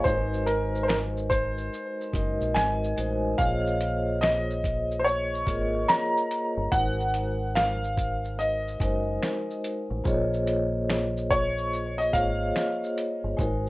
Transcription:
0.00 0.30 D#5 medium
0.04 1.68 G#1 loud
0.04 1.23 G#3 medium
0.04 1.23 D#4 medium
0.04 1.24 F#4 medium
0.04 1.24 A#4 medium
0.04 0.15 B4 medium
0.04 0.43 C5 medium
0.04 kick loud
0.04 shaker medium
0.14 1.28 C5 medium
0.33 shaker soft
0.46 0.84 A#4 medium
0.46 closed hi-hat medium
0.46 shaker soft
0.75 shaker soft
0.83 0.89 C5 medium
0.88 0.98 A#4 medium
0.88 finger snap loud
0.88 snare loud
0.88 shaker medium
1.17 shaker soft
1.30 2.51 C5 medium
1.30 kick medium
1.30 closed hi-hat medium
1.30 shaker soft
1.58 shaker soft
1.73 shaker medium
2.01 shaker soft
2.12 2.37 F#1 medium
2.12 2.75 G#3 medium
2.12 2.75 D#4 medium
2.12 2.76 F#4 medium
2.12 2.76 A#4 medium
2.12 2.77 D#5 medium
2.12 kick loud
2.12 closed hi-hat medium
2.12 shaker medium
2.41 2.54 A#1 medium
2.41 shaker medium
2.54 2.93 G#1 medium
2.54 3.41 G#5 loud
2.54 finger snap medium
2.54 snare loud
2.54 shaker medium
2.84 shaker soft
2.96 3.34 A1 medium
2.96 3.29 G#3 medium
2.96 3.29 D#4 medium
2.96 3.30 F#4 medium
2.96 3.30 A#4 medium
2.96 3.31 C5 medium
2.96 closed hi-hat medium
2.96 shaker soft
3.38 5.43 A#1 loud
3.38 4.56 A#3 medium
3.38 4.57 F4 medium
3.38 4.57 G#4 medium
3.38 4.57 C5 medium
3.38 4.58 C#5 medium
3.38 4.58 D#5 medium
3.38 4.18 F5 medium
3.38 kick loud
3.38 shaker medium
3.67 shaker soft
3.81 closed hi-hat medium
3.81 shaker medium
4.21 5.02 D#5 medium
4.21 finger snap loud
4.21 snare loud
4.21 shaker medium
4.51 shaker soft
4.64 kick medium
4.64 closed hi-hat medium
4.64 shaker soft
4.91 shaker soft
5.00 5.05 C5 medium
5.05 5.91 C#5 medium
5.05 shaker medium
5.35 shaker soft
5.46 5.84 G#1 medium
5.46 6.34 A#3 medium
5.46 6.34 F4 medium
5.46 6.34 G#4 medium
5.46 6.35 A#4 medium
5.46 6.35 C#5 medium
5.46 6.35 D#5 medium
5.46 kick medium
5.46 closed hi-hat medium
5.46 shaker soft
5.88 6.74 A#5 loud
5.88 finger snap medium
5.88 snare loud
5.88 shaker medium
6.17 shaker soft
6.31 closed hi-hat medium
6.31 shaker soft
6.57 6.71 G1 medium
6.71 8.76 G#1 loud
6.71 7.90 G#3 medium
6.71 7.90 D#4 medium
6.71 7.91 F#4 medium
6.71 7.91 A#4 medium
6.71 7.91 C5 medium
6.71 7.58 F#5 loud
6.71 kick loud
6.71 shaker medium
7.00 shaker soft
7.14 closed hi-hat medium
7.14 shaker medium
7.55 8.41 F5 loud
7.55 finger snap loud
7.55 snare loud
7.55 shaker medium
7.84 shaker soft
7.97 kick medium
7.97 closed hi-hat medium
7.97 shaker soft
8.25 shaker soft
8.39 9.60 D#5 medium
8.39 shaker medium
8.68 shaker soft
8.80 9.17 F#1 medium
8.80 9.68 G#3 medium
8.80 9.68 D#4 medium
8.80 9.68 F#4 medium
8.80 9.69 A#4 medium
8.80 9.69 C5 medium
8.80 kick medium
8.80 closed hi-hat medium
8.80 shaker medium
9.23 finger snap medium
9.23 snare loud
9.23 shaker medium
9.51 shaker soft
9.64 closed hi-hat medium
9.64 shaker medium
9.90 10.04 A1 medium
10.04 12.10 A#1 loud
10.04 11.23 A#3 loud
10.04 11.23 F4 medium
10.04 11.23 G#4 medium
10.04 11.24 C5 medium
10.04 11.24 C#5 medium
10.04 11.24 D#5 medium
10.04 kick loud
10.04 shaker medium
10.34 shaker soft
10.47 closed hi-hat medium
10.47 shaker medium
10.90 finger snap loud
10.90 snare loud
10.90 shaker medium
11.17 shaker soft
11.31 12.01 C#5 medium
11.31 kick loud
11.31 closed hi-hat medium
11.31 shaker soft
11.58 shaker soft
11.73 shaker medium
11.98 12.12 D#5 medium
11.98 shaker soft
12.13 12.51 G#1 medium
12.13 13.01 A#3 medium
12.13 13.01 F4 medium
12.13 13.01 G#4 medium
12.13 13.02 C5 medium
12.13 13.02 C#5 medium
12.13 13.02 D#5 medium
12.13 12.93 F5 medium
12.13 kick medium
12.13 closed hi-hat medium
12.13 shaker medium
12.56 finger snap medium
12.56 snare loud
12.56 shaker medium
12.84 shaker soft
12.98 closed hi-hat medium
12.98 shaker soft
13.24 13.37 G1 medium
13.37 13.69 G#1 loud
13.37 13.69 G#3 medium
13.37 13.69 D#4 medium
13.37 13.69 F#4 medium
13.37 13.69 A#4 medium
13.37 13.69 C5 medium
13.37 kick loud
13.37 shaker medium

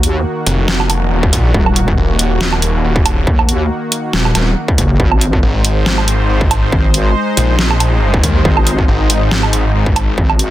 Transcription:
0.00 0.23 D#2 loud
0.00 4.96 D#3 medium
0.00 4.96 A#3 medium
0.00 4.96 F#4 loud
0.00 closed hi-hat medium
0.46 1.06 F1 loud
0.46 closed hi-hat medium
0.68 snare loud
0.80 low woodblock medium
0.90 closed hi-hat medium
0.90 low woodblock medium
1.06 1.31 E1 loud
1.23 kick loud
1.33 1.53 A#1 loud
1.33 kick medium
1.33 closed hi-hat medium
1.54 1.96 D#1 loud
1.54 kick loud
1.66 low woodblock medium
1.76 closed hi-hat medium
1.88 kick medium
1.98 2.82 D#1 loud
2.19 closed hi-hat medium
2.41 snare loud
2.53 low woodblock medium
2.62 closed hi-hat medium
2.84 3.25 D#1 medium
2.96 kick loud
3.06 closed hi-hat medium
3.06 low woodblock medium
3.27 3.69 D#2 loud
3.27 kick loud
3.39 low woodblock medium
3.49 closed hi-hat medium
3.92 closed hi-hat medium
4.13 4.33 D#1 loud
4.13 snare loud
4.25 low woodblock medium
4.35 4.55 D#1 loud
4.35 snare medium
4.35 closed hi-hat medium
4.35 low woodblock soft
4.68 kick loud
4.78 4.98 F#1 loud
4.78 kick medium
4.78 closed hi-hat medium
5.00 5.41 G#1 loud
5.00 10.50 G#3 medium
5.00 10.50 D#4 medium
5.00 10.50 C5 loud
5.00 kick loud
5.12 low woodblock medium
5.21 closed hi-hat medium
5.33 kick medium
5.43 6.28 G#1 loud
5.65 closed hi-hat medium
5.86 snare loud
5.98 low woodblock medium
6.08 closed hi-hat medium
6.29 6.71 G#1 loud
6.41 kick loud
6.51 closed hi-hat medium
6.51 low woodblock medium
6.72 7.14 G#1 loud
6.72 kick loud
6.94 closed hi-hat medium
7.37 8.22 A#1 loud
7.37 closed hi-hat medium
7.59 snare loud
7.71 low woodblock medium
7.80 closed hi-hat medium
7.80 low woodblock medium
8.14 kick loud
8.23 8.43 D#2 loud
8.23 kick medium
8.23 closed hi-hat medium
8.45 8.87 G#1 medium
8.45 kick loud
8.57 low woodblock medium
8.67 closed hi-hat medium
8.79 kick medium
8.88 9.73 G#1 loud
9.10 closed hi-hat medium
9.31 snare loud
9.43 low woodblock medium
9.53 closed hi-hat medium
9.75 10.16 G#1 loud
9.86 kick loud
9.96 closed hi-hat medium
9.96 low woodblock medium
10.18 10.50 G#1 loud
10.18 kick loud
10.30 low woodblock medium
10.39 closed hi-hat medium

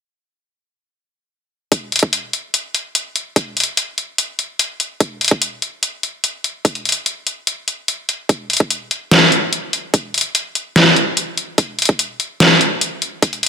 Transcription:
1.72 kick loud
1.72 closed hi-hat medium
1.92 closed hi-hat soft
1.96 closed hi-hat medium
1.99 kick medium
1.99 closed hi-hat medium
2.13 closed hi-hat medium
2.33 closed hi-hat medium
2.54 closed hi-hat medium
2.75 closed hi-hat soft
2.95 closed hi-hat medium
3.16 closed hi-hat medium
3.36 kick loud
3.36 closed hi-hat medium
3.57 closed hi-hat soft
3.60 closed hi-hat medium
3.64 closed hi-hat medium
3.77 closed hi-hat medium
3.98 closed hi-hat soft
4.18 closed hi-hat medium
4.39 closed hi-hat soft
4.59 closed hi-hat medium
4.80 closed hi-hat medium
5.00 kick loud
5.00 closed hi-hat medium
5.21 closed hi-hat soft
5.25 closed hi-hat medium
5.28 kick loud
5.28 closed hi-hat medium
5.42 closed hi-hat medium
5.62 closed hi-hat soft
5.83 closed hi-hat medium
6.03 closed hi-hat soft
6.24 closed hi-hat medium
6.44 closed hi-hat soft
6.65 kick loud
6.65 closed hi-hat medium
6.75 closed hi-hat soft
6.85 closed hi-hat soft
6.89 closed hi-hat medium
6.92 closed hi-hat medium
7.06 closed hi-hat medium
7.27 closed hi-hat soft
7.47 closed hi-hat medium
7.68 closed hi-hat soft
7.88 closed hi-hat medium
8.09 closed hi-hat soft
8.29 kick loud
8.29 closed hi-hat medium
8.50 closed hi-hat soft
8.53 closed hi-hat medium
8.57 kick loud
8.57 closed hi-hat medium
8.70 closed hi-hat medium
8.91 closed hi-hat soft
9.11 snare loud
9.11 closed hi-hat medium
9.32 closed hi-hat soft
9.53 closed hi-hat medium
9.73 closed hi-hat soft
9.94 kick loud
9.94 closed hi-hat medium
10.14 closed hi-hat soft
10.18 closed hi-hat medium
10.21 closed hi-hat medium
10.35 closed hi-hat medium
10.55 closed hi-hat soft
10.76 snare loud
10.76 closed hi-hat medium
10.96 closed hi-hat soft
11.17 closed hi-hat medium
11.38 closed hi-hat soft
11.58 kick loud
11.58 closed hi-hat medium
11.79 closed hi-hat soft
11.82 closed hi-hat medium
11.85 kick loud
11.85 closed hi-hat medium
11.99 closed hi-hat medium
12.20 closed hi-hat medium
12.40 snare loud
12.40 closed hi-hat medium
12.61 closed hi-hat soft
12.81 closed hi-hat medium
13.02 closed hi-hat medium
13.22 kick loud
13.22 closed hi-hat medium
13.33 closed hi-hat soft
13.43 closed hi-hat soft

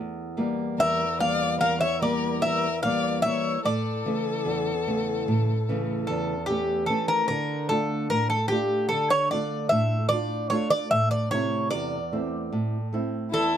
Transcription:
0.00 0.76 E2 medium
0.37 1.03 E3 soft
0.37 1.03 G3 soft
0.37 1.03 A#3 medium
0.78 1.58 E2 medium
0.78 1.17 A#4 medium
0.78 1.17 E5 loud
1.19 1.85 E3 soft
1.19 1.85 G3 soft
1.19 1.85 A#3 soft
1.19 1.58 D5 loud
1.19 1.60 F5 loud
1.61 2.40 E2 medium
1.61 1.79 A#4 medium
1.61 1.80 F5 loud
1.81 2.00 C#5 medium
1.81 2.02 E5 medium
2.02 2.67 E3 medium
2.02 2.67 G3 soft
2.02 2.67 A#3 medium
2.02 2.39 A#4 medium
2.02 2.40 D5 medium
2.42 3.21 E2 medium
2.42 2.81 A#4 medium
2.42 2.80 E5 medium
2.83 3.23 E3 soft
2.83 3.23 G3 soft
2.83 3.24 A#3 medium
2.83 3.22 D5 medium
2.83 3.21 F5 medium
3.22 3.56 E3 medium
3.22 3.57 G3 soft
3.22 3.57 A#3 medium
3.22 3.61 E5 loud
3.27 3.63 C#5 medium
3.65 4.05 A2 medium
3.65 6.45 A4 medium
3.65 6.45 D5 medium
4.06 4.71 C#3 medium
4.06 4.71 E3 medium
4.06 4.71 A3 soft
4.45 5.24 E2 medium
4.87 5.52 C#3 soft
4.87 5.52 E3 soft
4.87 5.52 A3 soft
5.28 6.06 A2 medium
5.69 6.34 C#3 medium
5.69 6.33 E3 medium
5.69 6.33 A3 soft
6.07 6.88 E2 medium
6.07 6.45 A4 medium
6.46 6.88 E3 soft
6.46 6.89 A3 soft
6.46 6.89 C#4 medium
6.46 6.85 G4 medium
6.86 7.22 E3 medium
6.86 7.22 A3 soft
6.86 7.22 C#4 medium
6.86 7.06 A4 medium
7.08 7.27 A#4 medium
7.28 8.08 D3 medium
7.28 7.69 A#4 medium
7.69 8.35 A3 medium
7.69 8.35 D4 medium
7.69 8.35 F4 medium
7.69 8.07 A4 medium
8.10 8.89 A2 medium
8.10 8.29 A#4 loud
8.30 8.48 A4 medium
8.48 9.15 A3 soft
8.48 9.15 D4 soft
8.48 9.16 F4 medium
8.48 8.88 G4 medium
8.89 9.70 D3 medium
8.89 9.08 A4 medium
9.10 9.29 C#5 loud
9.31 9.96 A3 soft
9.31 9.96 D4 medium
9.31 9.97 F4 medium
9.31 9.69 D5 medium
9.69 10.49 A2 medium
9.69 10.08 E5 medium
10.09 10.50 A3 soft
10.09 10.51 D4 soft
10.09 10.51 F4 medium
10.09 10.47 D5 loud
10.50 10.84 A3 medium
10.50 10.84 D4 soft
10.50 10.84 F4 medium
10.50 10.69 C#5 medium
10.70 10.90 D5 loud
10.91 11.69 A2 medium
10.91 11.10 E5 loud
11.11 11.30 D5 medium
11.31 11.96 C3 soft
11.31 11.96 A3 medium
11.31 11.97 E4 medium
11.31 11.69 C#5 loud
11.71 12.50 E2 medium
11.71 12.87 D5 medium
12.12 12.76 A3 soft
12.12 12.76 C4 soft
12.12 12.76 E4 soft
12.52 13.30 A2 medium
12.93 13.56 A3 medium
12.93 13.56 C4 soft
12.93 13.57 E4 medium
13.31 13.57 E2 medium
13.31 13.57 E4 medium
13.31 13.57 A4 medium

